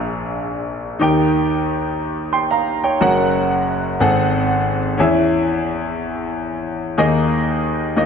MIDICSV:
0, 0, Header, 1, 2, 480
1, 0, Start_track
1, 0, Tempo, 664525
1, 730, Time_signature, 6, 3, 24, 8
1, 5819, End_track
2, 0, Start_track
2, 0, Title_t, "Grand piano"
2, 0, Program_c, 0, 0
2, 0, Control_c, 0, 64, 127
2, 0, Note_on_c, 0, 34, 64
2, 0, Note_on_c, 0, 46, 69
2, 0, Note_on_c, 0, 62, 67
2, 0, Note_on_c, 0, 68, 61
2, 0, Note_on_c, 0, 70, 62
2, 0, Note_on_c, 0, 77, 77
2, 693, Note_off_c, 0, 62, 0
2, 697, Note_off_c, 0, 68, 0
2, 698, Note_off_c, 0, 46, 0
2, 699, Note_off_c, 0, 34, 0
2, 701, Note_off_c, 0, 70, 0
2, 707, Note_off_c, 0, 77, 0
2, 718, Note_on_c, 0, 63, 64
2, 727, Note_on_c, 0, 67, 58
2, 728, Note_on_c, 0, 39, 63
2, 729, Note_on_c, 0, 51, 61
2, 733, Note_on_c, 0, 70, 61
2, 741, Control_c, 0, 64, 0
2, 741, Note_on_c, 0, 79, 73
2, 846, Control_c, 0, 64, 127
2, 1674, Note_off_c, 0, 79, 0
2, 1681, Note_on_c, 0, 84, 55
2, 1685, Note_on_c, 0, 79, 45
2, 1800, Note_off_c, 0, 84, 0
2, 1802, Note_off_c, 0, 79, 0
2, 1810, Note_on_c, 0, 82, 54
2, 1813, Note_on_c, 0, 77, 47
2, 2039, Note_off_c, 0, 82, 0
2, 2040, Note_off_c, 0, 77, 0
2, 2049, Note_on_c, 0, 79, 52
2, 2053, Note_on_c, 0, 73, 48
2, 2136, Note_off_c, 0, 63, 0
2, 2140, Note_off_c, 0, 67, 0
2, 2141, Note_off_c, 0, 39, 0
2, 2141, Note_off_c, 0, 51, 0
2, 2144, Note_off_c, 0, 70, 0
2, 2172, Note_on_c, 0, 61, 66
2, 2172, Note_on_c, 0, 66, 63
2, 2175, Note_on_c, 0, 30, 63
2, 2175, Note_on_c, 0, 70, 58
2, 2176, Note_on_c, 0, 42, 62
2, 2180, Control_c, 0, 64, 0
2, 2181, Note_on_c, 0, 78, 76
2, 2278, Note_off_c, 0, 79, 0
2, 2280, Note_off_c, 0, 73, 0
2, 2325, Control_c, 0, 64, 127
2, 2864, Note_off_c, 0, 30, 0
2, 2865, Note_off_c, 0, 42, 0
2, 2888, Note_off_c, 0, 78, 0
2, 2891, Note_on_c, 0, 44, 62
2, 2892, Note_off_c, 0, 61, 0
2, 2892, Note_off_c, 0, 66, 0
2, 2892, Note_on_c, 0, 60, 65
2, 2893, Note_off_c, 0, 70, 0
2, 2893, Note_on_c, 0, 32, 63
2, 2896, Note_on_c, 0, 68, 59
2, 2896, Note_on_c, 0, 69, 63
2, 2899, Note_on_c, 0, 78, 72
2, 2901, Control_c, 0, 64, 0
2, 3017, Control_c, 0, 64, 127
2, 3582, Note_off_c, 0, 44, 0
2, 3584, Note_off_c, 0, 32, 0
2, 3594, Note_on_c, 0, 61, 66
2, 3600, Note_off_c, 0, 68, 0
2, 3605, Note_on_c, 0, 64, 58
2, 3608, Note_on_c, 0, 40, 65
2, 3609, Note_on_c, 0, 52, 68
2, 3611, Note_on_c, 0, 68, 64
2, 3612, Note_off_c, 0, 60, 0
2, 3614, Note_off_c, 0, 69, 0
2, 3615, Note_off_c, 0, 78, 0
2, 3616, Note_on_c, 0, 76, 68
2, 3621, Control_c, 0, 64, 0
2, 3765, Control_c, 0, 64, 127
2, 5015, Note_off_c, 0, 61, 0
2, 5020, Note_off_c, 0, 64, 0
2, 5022, Note_off_c, 0, 40, 0
2, 5022, Note_off_c, 0, 52, 0
2, 5023, Note_off_c, 0, 68, 0
2, 5026, Note_off_c, 0, 76, 0
2, 5039, Note_on_c, 0, 58, 68
2, 5040, Note_on_c, 0, 51, 68
2, 5042, Note_on_c, 0, 63, 65
2, 5043, Note_on_c, 0, 68, 64
2, 5044, Note_on_c, 0, 39, 62
2, 5049, Note_on_c, 0, 75, 76
2, 5061, Control_c, 0, 64, 0
2, 5172, Control_c, 0, 64, 127
2, 5738, Note_off_c, 0, 51, 0
2, 5740, Note_off_c, 0, 39, 0
2, 5742, Note_off_c, 0, 58, 0
2, 5746, Note_off_c, 0, 63, 0
2, 5753, Note_on_c, 0, 58, 65
2, 5754, Note_off_c, 0, 75, 0
2, 5756, Note_on_c, 0, 63, 62
2, 5760, Note_on_c, 0, 39, 69
2, 5760, Note_on_c, 0, 51, 67
2, 5762, Note_on_c, 0, 65, 50
2, 5765, Note_on_c, 0, 75, 78
2, 5768, Note_off_c, 0, 68, 0
2, 5781, Control_c, 0, 64, 0
2, 5814, Note_off_c, 0, 65, 0
2, 5819, Note_off_c, 0, 39, 0
2, 5819, Note_off_c, 0, 51, 0
2, 5819, Note_off_c, 0, 58, 0
2, 5819, Note_off_c, 0, 63, 0
2, 5819, Note_off_c, 0, 75, 0
2, 5819, End_track
0, 0, End_of_file